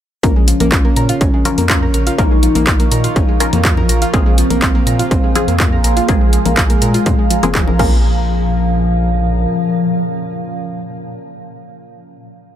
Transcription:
0.23 analog synth bass A#1, synth drone A#2 F3, synth arpeggio sound A#3 A#4, soft synth lead C#4, synth stab C#4 F4 A#4, ambient pad A#4 F5 C#6, kick, closed hi-hat
0.36 synth arpeggio sound G#3 G#4
0.48 synth arpeggio sound F3 F4, closed hi-hat
0.60 analog synth bass A#1, synth arpeggio sound A#3 A#4, closed hi-hat, low conga
0.72 synth arpeggio sound F4 F5, kick, clap, closed hi-hat
0.85 synth arpeggio sound A#3 A#4
0.96 analog synth bass A#2, synth arpeggio sound A#4 A#5, closed hi-hat
1.09 synth arpeggio sound F4 F5, closed hi-hat
1.21 analog synth bass A#1, synth arpeggio sound C#4 C#5, kick, closed hi-hat
1.34 synth arpeggio sound G#3 G#4
1.45 synth arpeggio sound F3 F4, synth stab C#4 F4 A#4, closed hi-hat, low conga
1.58 analog synth bass F2, synth arpeggio sound A#3 A#4, closed hi-hat
1.70 soft synth lead C#4, synth arpeggio sound F4 F5, kick, clap, closed hi-hat
1.82 synth arpeggio sound A#4 A#5
1.94 analog synth bass A#1, synth arpeggio sound A#4 A#5, closed hi-hat
2.07 synth arpeggio sound F4 F5, closed hi-hat
2.18 analog synth bass A#1, synth arpeggio sound A#3 A#4, synth stab C#4 F4 A#4, soft synth lead D#4, kick, closed hi-hat
2.31 synth arpeggio sound G#3 G#4
2.43 synth arpeggio sound F3 F4, closed hi-hat
2.55 analog synth bass A#1, synth arpeggio sound A#3 A#4, closed hi-hat, low conga
2.67 synth arpeggio sound F4 F5, kick, clap, closed hi-hat
2.80 synth arpeggio sound A#3 A#4, closed hi-hat
2.92 analog synth bass A#2, synth arpeggio sound A#4 A#5, closed hi-hat
3.04 synth arpeggio sound F4 F5, closed hi-hat
3.16 analog synth bass A#1, synth arpeggio sound C#4 C#5, kick, closed hi-hat
3.28 synth arpeggio sound G#3 G#4
3.40 synth arpeggio sound F3 F4, synth stab C#4 F4 A#4, closed hi-hat
3.53 analog synth bass F2, synth arpeggio sound A#3 A#4, closed hi-hat, low conga
3.65 soft synth lead F4, synth arpeggio sound F4 F5, kick, clap, closed hi-hat
3.77 synth arpeggio sound A#4 A#5, low conga
3.89 analog synth bass A#1, synth arpeggio sound A#4 A#5, closed hi-hat
4.02 synth arpeggio sound F4 F5, closed hi-hat
4.13 analog synth bass A#1, synth arpeggio sound A#3 A#4, soft synth lead C4, synth stab C4 F4 G#4, ambient pad G#4 C6, kick, closed hi-hat
4.26 synth arpeggio sound G#3 G#4
4.38 synth arpeggio sound F3 F4, closed hi-hat
4.50 analog synth bass A#1, synth arpeggio sound A#3 A#4, closed hi-hat, low conga
4.62 synth arpeggio sound F4 F5, kick, clap, closed hi-hat
4.75 synth arpeggio sound A#3 A#4
4.87 analog synth bass A#2, synth arpeggio sound A#4 A#5, closed hi-hat
4.99 synth arpeggio sound F4 F5, closed hi-hat
5.11 analog synth bass A#1, synth arpeggio sound C4 C5, kick, closed hi-hat
5.24 synth arpeggio sound G#3 G#4
5.35 synth arpeggio sound F3 F4, synth stab C4 F4 G#4, closed hi-hat, low conga
5.48 analog synth bass F2, synth arpeggio sound A#3 A#4, closed hi-hat
5.60 soft synth lead A#3, synth arpeggio sound F4 F5, kick, clap, closed hi-hat
5.72 synth arpeggio sound A#4 A#5
5.84 analog synth bass A#1, synth arpeggio sound A#4 A#5, closed hi-hat
5.97 synth arpeggio sound F4 F5, closed hi-hat
6.08 analog synth bass A#1, soft synth lead G#3, synth arpeggio sound A#3 A#4, synth stab C4 F4 G#4, ambient pad A#5, kick, closed hi-hat
6.21 synth arpeggio sound G#3 G#4
6.33 synth arpeggio sound F3 F4, closed hi-hat
6.45 analog synth bass A#1, synth arpeggio sound A#3 A#4, closed hi-hat, low conga
6.57 synth arpeggio sound F4 F5, kick, clap, closed hi-hat
6.70 synth arpeggio sound A#3 A#4, closed hi-hat
6.82 analog synth bass A#2, synth arpeggio sound A#4 A#5, closed hi-hat
6.94 synth arpeggio sound F4 F5, closed hi-hat
7.06 analog synth bass A#2, synth arpeggio sound C4 C5, kick, closed hi-hat
7.19 synth arpeggio sound G#3 G#4
7.30 synth arpeggio sound F3 F4, closed hi-hat
7.43 analog synth bass F1, synth arpeggio sound A#3 A#4, synth stab C4 F4 G#4, closed hi-hat, low conga
7.55 soft synth lead F3, synth stab C4 F4 G#4, synth arpeggio sound F4 F5, kick, clap, closed hi-hat
7.67 synth arpeggio sound A#4 A#5, low conga
7.79 analog synth bass A#1, synth drone A#2 F3, synth arpeggio sound A#3, ambient pad C#4 A#4 F5, synth stab C#4 F4 A#4, kick, crash

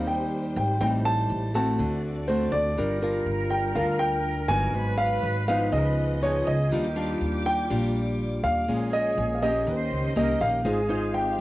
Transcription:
Already playing: upright bass D#2, nylon-string guitar D#3 G3 C4 D#4, string section G3 G4 C5
0.07 grand piano G5
0.56 upright bass G#1, grand piano G5
0.80 upright bass A1, nylon-string guitar A2 G3 C4 D#4, string section A3, grand piano G5
1.05 grand piano A5
1.30 upright bass A1
1.54 nylon-string guitar A3 C4 F#4, grand piano A5
1.78 upright bass D2, nylon-string guitar D3, string section C4 F#4 D5
2.28 nylon-string guitar A3 C4 F#4, grand piano C5
2.52 upright bass D2, grand piano D5
2.77 upright bass G1, string section G3 F4 A#4, nylon-string guitar G3 D4 F4 A#4, flute section A#4
3.02 nylon-string guitar D4 F4 A#4
3.26 upright bass G1
3.51 grand piano G5
3.75 upright bass D2, nylon-string guitar D3 D4 F4 A#4, grand piano F5
3.99 grand piano G5
4.48 upright bass G1, nylon-string guitar F#3 B3 D#4, grand piano G#5
4.73 upright bass G#1, nylon-string guitar G#2, string section G#3 F#4 B4, flute section B4
4.98 grand piano F5
5.23 upright bass G#1
5.48 nylon-string guitar F3 B3 D#4, grand piano F5
5.72 upright bass C#2, nylon-string guitar C#3, string section B3 F4 D#5, flute section B4, grand piano D#5
6.22 nylon-string guitar F3 B3 D#4, flute section G#4, grand piano C#5
6.47 upright bass C#2, grand piano D#5
6.71 upright bass D#2, nylon-string guitar D#3 G3 D4 F4, string section G3 D6, flute section G4
6.96 nylon-string guitar G3 D4 F4
7.21 upright bass D#2
7.46 grand piano G5
7.70 upright bass A#1, nylon-string guitar A#2 G3 D4 F4
8.44 upright bass D#2, grand piano F5
8.68 upright bass A#1, nylon-string guitar A#2 G#3 C#4 F4, string section A#3 G#4 C#5, flute section G#4
8.93 grand piano D#5
9.18 upright bass A#1
9.35 grand piano F5
9.42 nylon-string guitar A#3 C#4 G4, grand piano D#5
9.66 upright bass D#2, nylon-string guitar D#3, string section C#4 G4 D#5, flute section C5
9.91 upright bass C#2
10.16 upright bass C2, nylon-string guitar A#3 C#4 G4, flute section A#4, grand piano D#5
10.40 upright bass A#1, flute section G4, grand piano F5
10.64 upright bass G#1, nylon-string guitar G#3 D#4 F4 C5, string section G#3 C4 F5, flute section G#4
10.89 nylon-string guitar D#4 F4 C5
11.14 flute section G4, grand piano G5

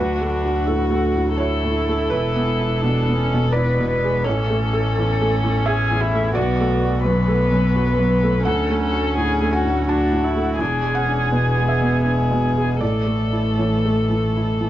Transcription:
Already playing: felt piano D2 B4, double bass D2, viola D4, violin F#4
0.21 felt piano A3
0.30 violin F#4
0.45 felt piano F#4
0.67 felt piano A2 A4, viola F#4
0.91 felt piano A3
1.16 felt piano A2
1.36 viola E4, felt piano F#4 C#5, violin A4
1.64 felt piano A2
1.88 felt piano A3
2.10 double bass E1, felt piano E2 B4
2.36 felt piano B3
2.61 felt piano E4
2.81 felt piano B2, viola D4
3.09 felt piano B3
3.17 viola C#4
3.34 felt piano B2
3.52 viola B3, felt piano E4 D5, violin B4
3.80 felt piano B2
3.89 violin B4
4.04 felt piano G#3
4.24 double bass A1, viola C#4, violin A4, felt piano C#5
4.28 felt piano A1
4.50 felt piano A3
4.73 felt piano A4
4.98 felt piano E2
5.21 felt piano A3
5.43 felt piano E2
5.65 violin G#4, felt piano G#4 E5
5.91 felt piano E2
6.01 violin E4
6.15 felt piano A3
6.35 double bass B1, felt piano B1 D5, viola B3, violin F#4
6.60 felt piano A3
6.83 felt piano F#4
7.04 felt piano F#2, viola B3, violin B4
7.28 felt piano A3
7.52 felt piano F#2
7.76 felt piano F#4
7.99 felt piano F#2
8.23 felt piano A3
8.45 felt piano D2 F#5, double bass D2, viola C#4, violin A4
8.70 felt piano A3
8.82 violin A4
8.92 felt piano F#4
9.17 felt piano A2, violin G#4
9.42 felt piano A3
9.53 violin F#4, felt piano G#5
9.64 felt piano A2
9.88 viola D4, violin F#4, felt piano F#4 A5
10.11 felt piano A2
10.24 viola E4
10.36 felt piano A3
10.59 double bass E1, felt piano E2, viola D4, violin G#4
10.83 felt piano G#3
10.95 viola C#4, felt piano F#5
11.07 felt piano D4
11.32 felt piano B2, viola B3
11.57 felt piano G#3
11.68 felt piano E5
11.81 felt piano B2
12.06 felt piano D4, violin G#4
12.31 felt piano B2
12.57 felt piano G#3
12.81 double bass A1, felt piano A2 D5, viola A3, violin A4
13.06 felt piano A3
13.33 felt piano E4
13.58 felt piano E3 C#5
13.85 felt piano A3
14.09 felt piano E3
14.37 felt piano E4
14.61 felt piano E3

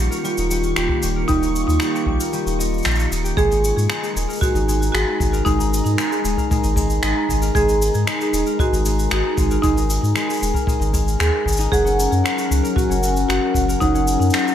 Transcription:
Already playing: ambient pad D#3 A#3 C#4 F4 G4 A#4, harp G3 C#4 D#4 G4 A#4, synth texture C#6
0.11 harp A#4, cabasa
0.24 harp G3, marimba F4, cabasa
0.38 sub bass D#1, harp D#4, cabasa
0.50 harp G3, cabasa
0.63 cabasa
0.76 sub bass D#1, marimba F4, harp G4, finger snap, cabasa
0.89 kick
1.03 sub bass D#1, harp G3, cabasa
1.16 harp A#4
1.28 sub bass D#1, harp G3, marimba D#4, kick, cabasa
1.42 harp D#4, cabasa
1.56 cabasa
1.67 sub bass D#2, cabasa
1.80 harp G3, finger snap, cabasa
1.94 harp G4, cabasa
2.06 sub bass A#1, harp G3, kick
2.20 harp A#4, cabasa
2.33 harp G3, cabasa
2.45 sub bass D#1, harp D#4, cabasa
2.59 harp D#5, cabasa
2.74 cabasa
2.78 cabasa
2.83 sub bass A#1, harp A#3, finger snap, cabasa
2.86 cabasa
2.91 cabasa
2.95 cabasa
3.00 cabasa
3.11 sub bass D#1, harp D#4, cabasa
3.24 harp G4, cabasa
3.37 sub bass G#1, harp G#3, ambient pad G#3, marimba G#4, kick, cabasa
3.51 harp D#4, cabasa
3.64 cabasa
3.70 ambient pad A#5
3.76 sub bass G#2, ambient pad D#4, cabasa
3.85 ambient pad A#4
3.90 harp G#3, finger snap, cabasa
4.02 harp G#4, cabasa
4.15 sub bass D#1, harp G#3, cabasa
4.28 harp A#4, cabasa
4.33 cabasa
4.35 cabasa
4.38 cabasa
4.40 harp G#3, marimba F#4, kick, cabasa
4.43 cabasa
4.54 sub bass G#1, harp D#4, cabasa
4.68 harp G#3, cabasa
4.82 cabasa
4.92 sub bass G#1, marimba F#4, harp G#4, finger snap, cabasa
5.20 sub bass G#1, harp G#3, kick, cabasa
5.33 harp A#4, cabasa
5.45 sub bass G#1, harp G#3, marimba D#4, kick, cabasa
5.58 harp D#4, cabasa
5.74 cabasa
5.85 sub bass G#2, cabasa
5.98 harp G#3, finger snap, cabasa
6.11 harp G#4, cabasa
6.24 sub bass D#1, harp G#3, cabasa
6.37 harp A#4, kick, cabasa
6.51 harp G#3, kick, cabasa
6.63 sub bass G#1, harp D#4, cabasa
6.76 harp G#3, kick, cabasa
6.90 cabasa
7.03 sub bass G#1, harp G#4, finger snap, cabasa
7.29 sub bass G#1, harp G#3, kick, cabasa
7.42 harp A#4, cabasa
7.55 sub bass G#1, harp G#3, marimba G#4, kick, cabasa
7.68 harp D#4, cabasa
7.82 cabasa
7.94 sub bass G#2, cabasa
8.07 harp G#3, finger snap, cabasa
8.20 harp G#4, cabasa
8.33 sub bass D#1, harp G#3, cabasa
8.46 harp A#4, cabasa
8.59 harp G#3, marimba F#4, kick, cabasa
8.72 sub bass G#1, harp D#4, cabasa
8.86 harp G#3, cabasa
8.99 cabasa
9.11 sub bass G#1, marimba F#4, harp G#4, finger snap, cabasa
9.37 sub bass G#1, harp G#3, kick, cabasa
9.51 harp A#4, cabasa
9.62 sub bass G#1, harp G#3, marimba D#4, kick, cabasa
9.76 harp D#4, cabasa
9.90 cabasa
10.02 sub bass G#2, cabasa
10.16 harp G#3, finger snap, cabasa
10.28 harp G#4, cabasa
10.33 cabasa
10.37 cabasa
10.40 sub bass D#1, harp G#3, cabasa
10.43 cabasa
10.46 cabasa
10.50 cabasa
10.53 harp A#4, kick, cabasa
10.56 cabasa
10.67 harp G#3, kick, cabasa
10.80 sub bass G#1, harp D#4, cabasa
10.93 harp G#3, kick, cabasa
11.08 cabasa
11.19 sub bass D#2, harp G#4, marimba G#4, finger snap, cabasa
11.45 sub bass G#1, harp G#3, kick, cabasa
11.52 cabasa
11.57 harp D#4, cabasa
11.60 cabasa
11.71 sub bass F#1, harp F#3, ambient pad F#3, marimba G#4, kick, cabasa
11.84 ambient pad C#4, harp C#4, cabasa
11.91 ambient pad G#4
12.00 cabasa
12.11 sub bass F#2, cabasa
12.24 harp F#4, finger snap, cabasa
12.37 harp F#4, cabasa
12.50 sub bass C#2, harp F#3, cabasa
12.63 harp A#4, cabasa
12.76 harp F#3, marimba F#4, kick, cabasa
12.89 sub bass F#1, harp C#4, cabasa
13.02 harp F#3, cabasa
13.17 cabasa
13.28 sub bass F#1, marimba F#4, harp F#4, finger snap, cabasa
13.54 sub bass F#1, harp F#3, kick, cabasa
13.68 harp A#4, cabasa
13.80 sub bass F#1, harp F#3, marimba D#4, kick, cabasa
13.94 harp C#4, cabasa
14.08 cabasa
14.20 sub bass F#2, cabasa
14.30 harp F#4, finger snap, cabasa
14.34 cabasa
14.39 cabasa
14.46 harp F#4, cabasa

